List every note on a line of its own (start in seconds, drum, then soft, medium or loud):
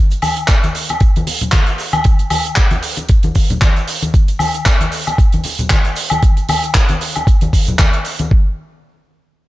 0.11 closed hi-hat medium
0.11 cabasa soft
0.22 open hi-hat loud
0.22 high conga medium
0.22 cabasa medium
0.22 high woodblock medium
0.37 closed hi-hat medium
0.37 cabasa medium
0.48 kick loud
0.48 clap loud
0.48 closed hi-hat medium
0.48 cabasa medium
0.64 closed hi-hat medium
0.64 high conga medium
0.64 cabasa soft
0.75 open hi-hat loud
0.75 cabasa medium
0.89 closed hi-hat medium
0.89 muted conga medium
0.89 cabasa soft
0.89 high woodblock medium
1.00 kick loud
1.00 closed hi-hat medium
1.00 cabasa medium
1.16 closed hi-hat soft
1.16 high conga medium
1.16 cabasa soft
1.27 open hi-hat loud
1.27 muted conga medium
1.27 cabasa medium
1.41 closed hi-hat medium
1.41 low conga medium
1.41 cabasa soft
1.52 kick loud
1.52 clap loud
1.52 closed hi-hat medium
1.52 high conga medium
1.52 cabasa medium
1.67 closed hi-hat soft
1.67 cabasa soft
1.78 open hi-hat loud
1.78 cabasa medium
1.93 closed hi-hat medium
1.93 high conga medium
1.93 cabasa medium
1.93 high woodblock medium
2.04 kick loud
2.04 closed hi-hat medium
2.04 cabasa medium
2.19 closed hi-hat medium
2.19 cabasa soft
2.30 open hi-hat loud
2.30 high conga medium
2.30 cabasa medium
2.30 high woodblock medium
2.45 closed hi-hat medium
2.45 cabasa soft
2.56 kick loud
2.56 clap loud
2.56 closed hi-hat medium
2.56 cabasa medium
2.71 closed hi-hat medium
2.71 muted conga medium
2.71 high conga medium
2.71 cabasa soft
2.83 open hi-hat loud
2.83 cabasa medium
2.96 closed hi-hat medium
2.96 muted conga medium
2.96 cabasa medium
3.09 kick loud
3.09 closed hi-hat medium
3.09 cabasa medium
3.23 closed hi-hat soft
3.23 high conga medium
3.23 cabasa soft
3.35 kick medium
3.35 open hi-hat loud
3.35 cabasa medium
3.50 closed hi-hat medium
3.50 low conga medium
3.50 cabasa medium
3.62 kick loud
3.62 clap loud
3.62 closed hi-hat medium
3.62 high conga medium
3.62 cabasa medium
3.76 closed hi-hat medium
3.76 cabasa soft
3.88 open hi-hat loud
3.88 cabasa medium
4.03 closed hi-hat medium
4.03 high conga medium
4.03 cabasa medium
4.14 kick loud
4.14 closed hi-hat medium
4.14 cabasa medium
4.28 closed hi-hat medium
4.28 cabasa soft
4.39 open hi-hat loud
4.39 high conga medium
4.39 cabasa loud
4.39 high woodblock medium
4.54 closed hi-hat medium
4.54 cabasa medium
4.66 kick loud
4.66 clap loud
4.66 closed hi-hat medium
4.66 cabasa medium
4.81 closed hi-hat medium
4.81 high conga medium
4.81 cabasa soft
4.92 open hi-hat loud
4.92 cabasa medium
5.07 closed hi-hat medium
5.07 muted conga medium
5.07 cabasa medium
5.07 high woodblock medium
5.18 kick loud
5.18 closed hi-hat medium
5.18 cabasa medium
5.32 closed hi-hat medium
5.32 high conga medium
5.32 cabasa soft
5.44 open hi-hat loud
5.44 muted conga medium
5.44 cabasa medium
5.59 closed hi-hat medium
5.59 low conga medium
5.59 cabasa medium
5.70 kick loud
5.70 clap loud
5.70 closed hi-hat medium
5.70 high conga medium
5.70 cabasa medium
5.85 closed hi-hat medium
5.85 cabasa soft
5.96 open hi-hat loud
5.96 cabasa medium
6.10 closed hi-hat medium
6.10 high conga medium
6.10 cabasa medium
6.10 high woodblock medium
6.22 kick loud
6.22 closed hi-hat medium
6.22 cabasa medium
6.37 closed hi-hat medium
6.37 cabasa soft
6.49 open hi-hat loud
6.49 high conga loud
6.49 cabasa medium
6.49 high woodblock medium
6.64 closed hi-hat medium
6.64 cabasa medium
6.74 kick loud
6.74 clap loud
6.74 closed hi-hat medium
6.74 cabasa medium
6.89 closed hi-hat medium
6.89 muted conga medium
6.89 high conga medium
6.89 cabasa soft
7.01 open hi-hat loud
7.01 cabasa medium
7.16 closed hi-hat medium
7.16 muted conga medium
7.16 cabasa soft
7.16 high woodblock medium
7.27 kick loud
7.27 closed hi-hat medium
7.27 cabasa medium
7.41 closed hi-hat medium
7.41 high conga medium
7.41 cabasa soft
7.53 kick medium
7.53 open hi-hat loud
7.53 cabasa loud
7.66 closed hi-hat medium
7.66 low conga medium
7.66 cabasa medium
7.79 kick loud
7.79 clap loud
7.79 closed hi-hat medium
7.79 high conga medium
7.79 cabasa medium
7.93 closed hi-hat medium
7.93 cabasa soft
8.05 open hi-hat loud
8.05 cabasa loud
8.19 closed hi-hat medium
8.19 high conga loud
8.19 cabasa medium
8.31 kick loud